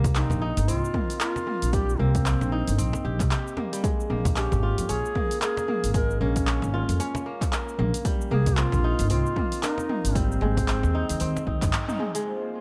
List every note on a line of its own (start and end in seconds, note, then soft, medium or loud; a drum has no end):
0.00 0.25 C2 loud
0.00 1.72 G3 medium
0.00 0.94 A#3 loud
0.00 0.21 C#4 loud
0.00 0.37 A#4 medium
0.04 cajon bass loud
0.04 kick loud
0.04 open hi-hat medium
0.04 shaker medium
0.15 0.68 C4 medium
0.15 0.70 D#4 loud
0.15 clap loud
0.15 open hi-hat soft
0.15 shaker medium
0.30 0.50 A#1 loud
0.30 cajon bass medium
0.30 cajon slap medium
0.30 shaker soft
0.42 2.04 D#4 loud
0.57 0.65 G1 loud
0.57 open hi-hat medium
0.57 shaker medium
0.68 0.80 C2 medium
0.68 2.25 C4 medium
0.68 1.20 F4 loud
0.68 open hi-hat soft
0.68 shaker medium
0.85 shaker soft
0.94 1.46 A#3 medium
0.94 kick medium
0.94 cajon slap medium
0.94 mid tom medium
1.10 open hi-hat medium
1.10 shaker medium
1.20 1.75 F4 loud
1.20 2.48 A#4 medium
1.20 clap loud
1.20 open hi-hat soft
1.20 shaker medium
1.36 cajon slap medium
1.36 shaker soft
1.47 1.99 A#3 medium
1.47 mid tom medium
1.62 1.95 A#1 medium
1.62 open hi-hat medium
1.62 shaker medium
1.73 3.71 G3 medium
1.73 2.01 G4 loud
1.73 kick loud
1.73 open hi-hat soft
1.73 shaker medium
1.90 shaker soft
1.99 2.35 C2 loud
1.99 3.57 A#3 medium
1.99 3.05 C4 loud
2.15 kick loud
2.15 open hi-hat medium
2.15 shaker medium
2.26 2.78 C4 medium
2.26 clap medium
2.26 open hi-hat soft
2.26 shaker medium
2.41 2.60 A#1 loud
2.41 cajon slap medium
2.41 shaker soft
2.52 4.14 D#4 medium
2.68 2.76 G1 loud
2.68 open hi-hat medium
2.68 shaker medium
2.78 2.90 A#1 medium
2.78 4.43 C4 medium
2.78 open hi-hat soft
2.78 shaker medium
2.93 cajon slap medium
2.93 shaker soft
3.05 3.20 A#1 loud
3.05 3.31 G4 medium
3.20 3.28 C2 medium
3.20 kick loud
3.20 clap soft
3.20 open hi-hat medium
3.20 shaker medium
3.31 3.90 G4 medium
3.31 clap medium
3.31 open hi-hat soft
3.31 shaker medium
3.48 shaker soft
3.57 4.10 A#3 medium
3.57 cajon slap medium
3.57 mid tom medium
3.73 3.89 G3 medium
3.73 open hi-hat medium
3.73 shaker medium
3.84 5.93 G#3 medium
3.84 kick loud
3.84 open hi-hat soft
3.84 shaker medium
4.00 shaker soft
4.10 4.46 A#1 medium
4.10 5.15 A#3 medium
4.10 mid tom medium
4.25 cajon bass medium
4.25 kick loud
4.25 open hi-hat medium
4.25 shaker medium
4.36 4.89 C#4 medium
4.36 4.90 G4 loud
4.36 clap medium
4.36 open hi-hat soft
4.36 shaker medium
4.52 4.71 G#1 loud
4.52 cajon bass medium
4.52 cajon slap medium
4.52 shaker soft
4.63 6.14 F4 medium
4.78 4.86 F2 loud
4.78 open hi-hat medium
4.78 shaker medium
4.89 5.01 A#1 medium
4.89 6.47 C#4 medium
4.89 5.41 G#4 loud
4.89 open hi-hat soft
4.89 shaker medium
5.05 shaker soft
5.15 5.68 A#3 medium
5.15 kick medium
5.15 cajon slap medium
5.15 mid tom medium
5.31 open hi-hat medium
5.31 shaker medium
5.42 5.91 G#4 loud
5.42 6.69 A#4 medium
5.42 clap medium
5.42 open hi-hat soft
5.42 shaker soft
5.57 cajon slap medium
5.57 shaker soft
5.68 6.20 A#3 medium
5.68 mid tom medium
5.84 6.16 G#1 medium
5.84 open hi-hat medium
5.84 shaker medium
5.94 8.10 G#3 medium
5.94 6.19 A#4 loud
5.94 kick loud
5.94 open hi-hat soft
5.94 shaker medium
6.10 shaker soft
6.21 6.56 A#1 loud
6.21 7.26 A#3 loud
6.21 7.22 C#4 medium
6.36 kick medium
6.36 open hi-hat soft
6.36 shaker medium
6.47 6.99 C#4 medium
6.47 clap loud
6.47 open hi-hat soft
6.47 shaker soft
6.62 6.81 G#1 loud
6.62 cajon slap medium
6.62 shaker soft
6.74 8.25 F4 loud
6.89 6.97 F2 loud
6.89 open hi-hat medium
6.89 shaker medium
7.00 8.64 C#4 medium
7.00 open hi-hat soft
7.00 shaker medium
7.15 cajon slap medium
7.15 shaker soft
7.26 7.78 A#3 medium
7.41 kick medium
7.41 clap soft
7.41 open hi-hat medium
7.41 shaker medium
7.52 8.80 A#4 medium
7.52 clap medium
7.52 open hi-hat soft
7.52 shaker medium
7.69 shaker soft
7.79 7.90 A#1 loud
7.79 8.31 A#3 medium
7.79 mid tom medium
7.94 open hi-hat medium
7.94 shaker medium
8.05 10.14 G3 medium
8.05 kick loud
8.05 open hi-hat soft
8.05 shaker medium
8.21 shaker soft
8.31 8.67 C2 loud
8.31 9.36 A#3 loud
8.31 8.59 G#4 loud
8.31 mid tom medium
8.46 cajon bass medium
8.46 kick loud
8.46 open hi-hat medium
8.46 shaker medium
8.57 9.10 C4 medium
8.57 9.10 F4 loud
8.57 clap medium
8.57 open hi-hat soft
8.57 shaker soft
8.72 8.92 A#1 loud
8.72 cajon bass medium
8.72 cajon slap medium
8.72 shaker soft
8.84 10.46 D#4 loud
8.99 9.08 G1 loud
8.99 open hi-hat medium
8.99 shaker medium
9.10 9.22 C2 medium
9.10 10.68 C4 loud
9.10 9.65 F4 loud
9.10 open hi-hat soft
9.10 shaker medium
9.26 shaker soft
9.36 9.89 A#3 medium
9.36 kick medium
9.36 cajon slap medium
9.36 mid tom medium
9.52 open hi-hat medium
9.52 shaker medium
9.63 10.17 D#4 loud
9.63 10.90 A#4 medium
9.63 clap medium
9.63 open hi-hat soft
9.63 shaker medium
9.78 cajon slap medium
9.78 shaker soft
9.89 11.82 A#3 medium
9.89 mid tom medium
10.05 10.38 G#1 medium
10.05 open hi-hat medium
10.05 shaker medium
10.15 12.31 G3 medium
10.15 11.73 C4 loud
10.15 kick loud
10.15 open hi-hat soft
10.15 shaker medium
10.32 shaker soft
10.41 10.78 G#1 medium
10.41 11.99 G#3 loud
10.41 cajon slap medium
10.41 mid tom medium
10.57 kick medium
10.57 cajon bass medium
10.57 open hi-hat medium
10.57 shaker medium
10.68 11.20 C4 medium
10.68 clap medium
10.68 open hi-hat soft
10.68 shaker medium
10.83 11.02 D#2 loud
10.83 cajon slap medium
10.83 shaker soft
10.95 11.47 D#4 loud
11.09 11.18 D#2 loud
11.09 open hi-hat medium
11.09 shaker medium
11.20 11.32 D#2 medium
11.20 11.73 C4 medium
11.20 open hi-hat soft
11.20 shaker medium
11.37 cajon slap medium
11.37 shaker soft
11.47 11.64 D#2 loud
11.47 11.88 D#4 medium
11.47 kick medium
11.62 11.71 G#1 medium
11.62 kick loud
11.62 clap soft
11.62 open hi-hat medium
11.62 shaker medium
11.73 12.61 C4 medium
11.73 clap loud
11.73 open hi-hat soft
11.73 shaker medium
11.88 12.61 D#4 medium
11.88 mid tom medium
11.88 shaker soft
11.99 12.14 G#3 medium
11.99 mid tom medium
12.15 12.31 G#3 loud
12.15 open hi-hat medium
12.15 shaker medium
12.26 12.61 A#3 medium
12.26 12.61 F4 medium
12.26 12.61 C5 medium